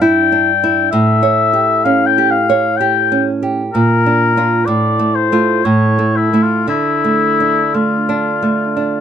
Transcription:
Already playing: nylon-string guitar G2 D4
0.01 nylon-string guitar E4, oboe G5
0.32 nylon-string guitar D4
0.64 nylon-string guitar E4
0.91 nylon-string guitar A2, oboe E5
1.23 nylon-string guitar C#5
1.53 nylon-string guitar G4
1.84 nylon-string guitar C#4, oboe F5
2.06 oboe G5
2.18 nylon-string guitar G4
2.31 oboe F5
2.50 nylon-string guitar C#5
2.77 nylon-string guitar G4, oboe G5
3.12 nylon-string guitar C#4
3.43 nylon-string guitar G4
3.73 nylon-string guitar A#2, oboe A#4
4.06 nylon-string guitar D4
4.37 nylon-string guitar D4 F4
4.66 nylon-string guitar A2, oboe D5
4.99 nylon-string guitar A3
5.15 oboe C5
5.32 nylon-string guitar A3 F4
5.65 nylon-string guitar A2, oboe C#5
5.99 nylon-string guitar A3
6.17 oboe E4
6.33 nylon-string guitar A3 E4
6.43 oboe F4
6.67 nylon-string guitar D3, oboe E4
7.04 nylon-string guitar A3
7.40 nylon-string guitar D4
7.74 nylon-string guitar A3, oboe F4
8.09 nylon-string guitar D4
8.42 nylon-string guitar A3
8.77 nylon-string guitar D4

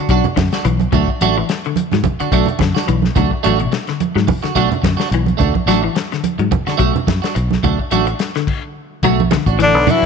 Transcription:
0.09 fingered electric bass B1, clean electric guitar F#3 D4 F#4, muted clean electric guitar stroke, kick, closed hi-hat, high conga
0.24 muted clean electric guitar stroke, closed hi-hat, low conga
0.36 fingered electric bass F#2, clean electric guitar D3, muted clean electric guitar stroke, kick, snare, closed hi-hat, high conga
0.52 clean electric guitar D4 F#4, snare, closed hi-hat
0.64 fingered electric bass B1, clean electric guitar E3, muted clean electric guitar stroke, closed hi-hat, high conga
0.80 closed hi-hat, high conga
0.92 fingered electric bass D2, clean electric guitar F#3 A3 D4 F#4, kick, closed hi-hat, low conga
1.08 muted clean electric guitar stroke, kick
1.21 fingered electric bass A1, clean electric guitar F#3 A3 D4 F#4, closed hi-hat, high conga
1.38 clean electric guitar E3, muted clean electric guitar stroke
1.49 muted clean electric guitar stroke, snare, closed hi-hat
1.64 clean electric guitar D3, closed hi-hat
1.76 closed hi-hat, high conga
1.92 fingered electric bass G#2, clean electric guitar F#3, muted clean electric guitar stroke, snare, closed hi-hat, high conga
2.04 muted clean electric guitar stroke, kick, closed hi-hat, high conga, low conga
2.20 clean electric guitar D3 D4 F#4, muted fingered electric bass stroke, closed hi-hat
2.32 fingered electric bass B1, clean electric guitar F#3 A3 D4 F#4, kick, closed hi-hat, high conga
2.46 muted clean electric guitar stroke, closed hi-hat, low conga
2.59 fingered electric bass F#2, clean electric guitar D3, muted clean electric guitar stroke, kick, snare, closed hi-hat, high conga
2.75 clean electric guitar D4 F#4, snare, closed hi-hat
2.86 fingered electric bass B1, clean electric guitar E3, muted clean electric guitar stroke, closed hi-hat, high conga
3.02 snare, high conga
3.15 fingered electric bass D2, clean electric guitar F#3 A3 D4 F#4, kick, closed hi-hat, low conga
3.31 muted clean electric guitar stroke, kick
3.43 fingered electric bass A1, clean electric guitar F#3 A3 D4 F#4, closed hi-hat, high conga
3.59 clean electric guitar B2, muted clean electric guitar stroke, closed hi-hat
3.72 muted clean electric guitar stroke, snare, closed hi-hat
3.87 clean electric guitar D3, snare, closed hi-hat
4.00 closed hi-hat, high conga
4.15 fingered electric bass G#2, clean electric guitar F#3, muted clean electric guitar stroke, snare
4.27 muted clean electric guitar stroke, kick, open hi-hat, high conga, low conga
4.43 clean electric guitar D3 F#4, muted clean electric guitar stroke, muted fingered electric bass stroke, snare, closed hi-hat
4.55 fingered electric bass B1, clean electric guitar F#3 A3 D4 F#4, kick, closed hi-hat
4.70 muted clean electric guitar stroke, closed hi-hat, low conga
4.82 fingered electric bass F#2, clean electric guitar D3, muted clean electric guitar stroke, kick, snare, closed hi-hat, high conga
4.97 clean electric guitar D4 F#4, snare, closed hi-hat
5.09 fingered electric bass B1, muted clean electric guitar stroke, closed hi-hat, high conga
5.14 clean electric guitar E3
5.26 closed hi-hat, high conga
5.37 fingered electric bass D2, clean electric guitar A3 D4 F#4, kick, closed hi-hat, low conga
5.54 muted clean electric guitar stroke, kick, high conga
5.66 fingered electric bass A1, clean electric guitar F#3 A3 D4 F#4, snare, closed hi-hat, high conga
5.83 clean electric guitar E3, muted clean electric guitar stroke
5.95 muted clean electric guitar stroke, snare, closed hi-hat
6.12 clean electric guitar D3, snare, closed hi-hat
6.24 closed hi-hat, high conga
6.38 fingered electric bass G#2, clean electric guitar F#3, muted clean electric guitar stroke, closed hi-hat
6.51 muted clean electric guitar stroke, kick, closed hi-hat, high conga, low conga
6.67 clean electric guitar D3 D4 F#4, muted fingered electric bass stroke, snare, closed hi-hat
6.77 fingered electric bass B1, clean electric guitar F#3 A3 F#4, muted clean electric guitar stroke, kick, closed hi-hat, high conga
6.94 muted clean electric guitar stroke, closed hi-hat, low conga
7.07 fingered electric bass F#2, muted clean electric guitar stroke, kick, snare, closed hi-hat, high conga
7.22 clean electric guitar D4 F#4, snare, closed hi-hat
7.35 fingered electric bass B1, muted clean electric guitar stroke, closed hi-hat, high conga
7.51 snare, high conga
7.63 fingered electric bass D2, clean electric guitar F#3 A3 D4 F#4, kick, closed hi-hat, low conga
7.78 muted clean electric guitar stroke, kick
7.91 fingered electric bass A1, clean electric guitar F#3 A3 D4 F#4, closed hi-hat, high conga
8.07 muted clean electric guitar stroke, closed hi-hat
8.19 muted clean electric guitar stroke, snare, closed hi-hat
8.35 clean electric guitar D3, snare, closed hi-hat
8.47 kick, crash
9.03 fingered electric bass B1, clean electric guitar F#3 A3 F#4, muted clean electric guitar stroke, kick, closed hi-hat
9.20 high conga
9.31 clean electric guitar D3, muted clean electric guitar stroke, snare, closed hi-hat, high conga
9.46 fingered electric bass A1, clean electric guitar D4 F#4, kick, closed hi-hat
9.59 baritone saxophone D3, clean electric guitar E3, tenor saxophone D4, muted clean electric guitar stroke, closed hi-hat, high conga
9.64 trombone D3
9.75 fingered electric bass B1, muted clean electric guitar stroke
9.87 baritone saxophone E3, clean electric guitar F#3 D4 F#4, tenor saxophone E4, closed hi-hat, high conga, low conga
9.92 trombone E3
10.02 muted clean electric guitar stroke, muted fingered electric bass stroke, kick

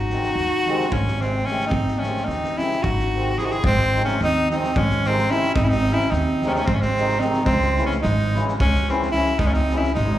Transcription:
Already playing: upright bass G#1, clarinet D#4, tenor saxophone F#4
0.10 accordion C3 D#3 G#3 C4, snare
0.23 snare
0.35 upright bass D#2, snare
0.65 accordion C3 D#3 G#3 C4, snare
0.80 snare
0.89 upright bass G#1, clarinet G#3, tenor saxophone C#4, kick
1.07 snare
1.19 accordion C3 D#3 G#3 C4, clarinet G#3, tenor saxophone C4, snare
1.43 accordion C3, clarinet A3, tenor saxophone C#4
1.47 accordion D#3 G#3 C4, snare
1.60 snare
1.66 clarinet C4, tenor saxophone D#4
1.71 upright bass G#1, kick
1.87 snare
1.98 accordion C3 D#3, clarinet A3, tenor saxophone C#4
2.02 accordion G#3 C4, snare
2.17 snare
2.25 upright bass D#2, clarinet C4, tenor saxophone D#4
2.29 snare
2.43 snare
2.57 accordion C3 D#3 G#3 C4, clarinet C#4, tenor saxophone E4, snare
2.71 snare
2.82 upright bass G#1, clarinet D#4, tenor saxophone F#4, kick
2.99 snare
3.13 accordion C3 D#3 G#3 C4
3.38 accordion C3 D#3 G#3 C4, clarinet E4, tenor saxophone G#4, snare
3.45 clarinet D#4, tenor saxophone F#4
3.50 clarinet E4, tenor saxophone G#4, snare
3.64 upright bass G#1, clarinet G#3, tenor saxophone C4, kick
3.79 snare
3.94 accordion C3 D#3 G#3 C4 D#4, snare
4.05 clarinet A3, tenor saxophone C#4, snare
4.20 upright bass D#2, clarinet C4, tenor saxophone D#4, snare
4.50 accordion C3 D#3 G#3 C4 D#4, clarinet C4, tenor saxophone D#4, snare
4.63 snare
4.76 upright bass G#1, clarinet G#3, tenor saxophone C#4, kick
4.90 snare
5.04 accordion C3 D#3 G#3 C4 D#4, clarinet G#3, tenor saxophone C4, snare
5.18 snare
5.29 accordion C3 D#3 G#3 C4 D#4, clarinet C#4, tenor saxophone E4, snare
5.43 snare
5.54 upright bass G#1, clarinet C4, tenor saxophone D#4, kick
5.64 clarinet C#4, tenor saxophone E4
5.69 clarinet C4, tenor saxophone D#4, snare
5.84 accordion C3 D#3 G#3 C4 D#4, snare
5.93 clarinet C#4, tenor saxophone E4
5.99 snare
6.10 upright bass D#2, clarinet C4, tenor saxophone D#4, snare
6.41 accordion C3 D#3 G#3 C4 D#4, snare
6.48 clarinet A3, tenor saxophone C#4
6.53 clarinet C4, tenor saxophone D#4, snare
6.58 clarinet A3, tenor saxophone C#4
6.66 upright bass G#1, clarinet G#3, tenor saxophone C4, kick
6.74 clarinet A3, tenor saxophone C#4
6.80 clarinet G#3, tenor saxophone C4, snare
6.96 accordion C3 D#3 G#3 C4 D#4, snare
7.08 snare
7.19 accordion C3 D#3 G#3 C4 D#4, clarinet C4, tenor saxophone D#4, snare
7.33 snare
7.44 upright bass C#2, clarinet G#3, tenor saxophone C4, kick
7.61 snare
7.77 accordion C#3 E3 G#3 C#4 E4, snare
7.83 clarinet A3, tenor saxophone C#4
7.91 snare
8.02 upright bass G#1, clarinet G#3, tenor saxophone D#4, snare
8.33 accordion C#3 E3 G#3 C#4 E4, snare
8.48 snare
8.57 upright bass C#2, clarinet G#3, tenor saxophone C#4, kick
8.75 snare
8.87 accordion C#3 E3 G#3 C#4 E4, clarinet G#3, tenor saxophone C4, snare
9.02 snare
9.11 accordion C#3 E3, clarinet C#4, tenor saxophone E4, snare
9.15 accordion G#3 C#4 E4
9.26 snare
9.39 upright bass C#2, clarinet G#3, tenor saxophone D#4, kick
9.47 clarinet A3, tenor saxophone C#4
9.53 clarinet C4, tenor saxophone D#4, snare
9.70 accordion C#3 E3 G#3 C#4 E4, snare
9.77 clarinet C#4, tenor saxophone E4
9.83 snare
9.94 upright bass G#1, clarinet G#3, tenor saxophone D#4, snare

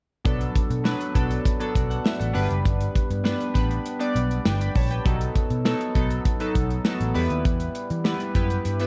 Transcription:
0.25 picked electric bass B1, synth keys F#3 B3 D4 A4, kick, closed hi-hat
0.41 closed hi-hat
0.55 kick, closed hi-hat
0.70 picked electric bass B2, closed hi-hat
0.84 synth keys F#3 B3 D4 B4, snare
1.01 closed hi-hat
1.14 picked electric bass B1, synth keys F#3 B3 D4 A4, kick, closed hi-hat
1.31 closed hi-hat
1.45 kick, closed hi-hat
1.60 synth keys F#3 B3 D4 A4, closed hi-hat
1.75 picked electric bass B1, synth keys F#4 D5, kick, closed hi-hat
1.90 synth keys A4 F#5, closed hi-hat
2.04 synth keys E5, snare
2.19 picked electric bass A1, synth keys A4 F#5, closed hi-hat
2.33 picked electric bass G1, synth keys G3 B3 D4 B4, open hi-hat
2.50 picked electric bass F#1, closed hi-hat
2.65 picked electric bass G1, kick, closed hi-hat
2.81 closed hi-hat
2.95 kick, closed hi-hat
3.10 picked electric bass G2, closed hi-hat
3.24 synth keys G3 B3 D4 B4, snare
3.41 closed hi-hat
3.54 picked electric bass A1, synth keys G3 B3 D4 B4, kick, closed hi-hat
3.71 closed hi-hat
3.86 closed hi-hat
3.99 synth keys G3 B3 D4 D5, closed hi-hat
4.15 picked electric bass B1, closed hi-hat
4.31 closed hi-hat
4.45 picked electric bass G1, synth keys B4 G5, snare
4.61 synth keys D5 B5, closed hi-hat
4.75 picked electric bass A#1, synth keys C#5 A5, kick, open hi-hat
4.91 synth keys B4 G5, closed hi-hat
5.05 picked electric bass B1, synth keys F#3 B3 D#4 A4, kick, closed hi-hat
5.21 closed hi-hat
5.36 kick, closed hi-hat
5.50 picked electric bass B2, closed hi-hat
5.65 synth keys F#3 B3 D#4 A4, snare
5.81 closed hi-hat
5.95 picked electric bass B1, synth keys F#3 B3 D#4 A4, kick, closed hi-hat
6.10 closed hi-hat
6.25 kick, closed hi-hat
6.40 synth keys F#3 B3 D#4 A4, closed hi-hat
6.55 picked electric bass B1, kick, closed hi-hat
6.71 closed hi-hat
6.84 synth keys F#3 B3 D#4 A4, snare
7.00 picked electric bass A1, closed hi-hat
7.14 picked electric bass E2, synth keys G3 B3 E4 B4, open hi-hat
7.30 picked electric bass D#2, closed hi-hat
7.45 picked electric bass E2, kick, closed hi-hat
7.60 closed hi-hat
7.75 closed hi-hat
7.90 picked electric bass E3, closed hi-hat
8.04 synth keys G3 B3 E4 B4, snare
8.20 closed hi-hat
8.35 picked electric bass F#2, synth keys B3 E4 G4 B4, kick, closed hi-hat
8.50 closed hi-hat
8.65 picked electric bass G2, closed hi-hat
8.80 synth keys G3 B3 E4 B4, closed hi-hat

